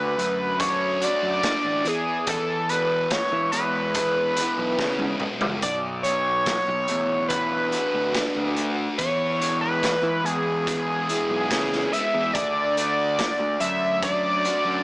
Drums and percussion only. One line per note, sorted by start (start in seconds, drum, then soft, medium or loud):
0.19 closed hi-hat medium
0.60 kick loud
0.60 closed hi-hat medium
1.01 closed hi-hat medium
1.43 kick loud
1.43 snare loud
1.43 closed hi-hat medium
1.85 closed hi-hat medium
2.27 kick loud
2.27 closed hi-hat medium
2.69 closed hi-hat medium
3.10 kick loud
3.10 snare medium
3.10 closed hi-hat medium
3.52 closed hi-hat medium
3.94 kick medium
3.94 closed hi-hat medium
4.36 closed hi-hat medium
4.79 kick medium
4.79 snare soft
4.99 high tom medium
5.20 mid tom medium
5.41 floor tom medium
5.62 kick medium
5.62 closed hi-hat medium
6.04 closed hi-hat medium
6.46 kick medium
6.46 snare loud
6.46 closed hi-hat medium
6.88 closed hi-hat medium
7.30 kick loud
7.30 closed hi-hat medium
7.72 closed hi-hat soft
8.14 kick loud
8.14 snare medium
8.14 closed hi-hat medium
8.56 closed hi-hat medium
8.99 kick medium
8.99 closed hi-hat medium
9.41 closed hi-hat soft
9.83 kick loud
9.83 snare loud
9.83 closed hi-hat medium
10.26 closed hi-hat medium
10.67 kick loud
10.67 closed hi-hat medium
11.09 closed hi-hat medium
11.51 kick medium
11.51 snare medium
11.51 closed hi-hat medium
11.73 snare soft
11.93 closed hi-hat medium
12.35 kick loud
12.35 closed hi-hat medium
12.77 closed hi-hat medium
13.19 kick loud
13.19 snare medium
13.19 closed hi-hat medium
13.60 closed hi-hat medium
14.02 kick loud
14.02 closed hi-hat medium
14.45 closed hi-hat soft